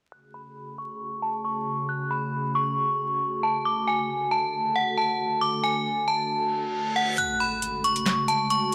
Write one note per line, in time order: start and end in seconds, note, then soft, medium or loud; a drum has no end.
0.12 3.62 C#3 medium
0.12 7.14 A3 medium
0.12 7.14 F#4 medium
0.12 3.62 G#4 loud
0.12 0.30 F#6 medium
0.34 0.76 B5 medium
0.78 1.20 C#6 medium
1.22 1.40 A5 medium
1.45 1.86 C#6 medium
1.89 2.07 F#6 medium
2.11 2.52 B5 medium
2.55 3.39 C#6 medium
3.43 3.61 A5 medium
3.65 7.14 D3 medium
3.65 7.15 A4 medium
3.65 3.83 D6 medium
3.87 4.29 G#5 medium
4.31 4.73 A5 medium
4.76 4.93 F#5 medium
4.98 5.39 A5 medium
5.41 5.59 D6 medium
5.63 6.05 G#5 medium
6.08 6.92 A5 medium
6.30 reverse cymbal medium
6.96 7.14 F#5 medium
7.18 8.75 C#3 medium
7.18 8.75 G#3 medium
7.18 8.75 A3 medium
7.18 8.75 F#4 loud
7.18 7.36 F#6 medium
7.18 closed hi-hat medium
7.18 impact medium
7.40 7.82 B5 medium
7.62 closed hi-hat medium
7.84 8.26 C#6 medium
7.84 closed hi-hat medium
7.96 closed hi-hat medium
8.06 snare loud
8.06 clap medium
8.06 closed hi-hat medium
8.28 8.46 A5 medium
8.28 closed hi-hat medium
8.50 8.75 C#6 medium
8.50 closed hi-hat medium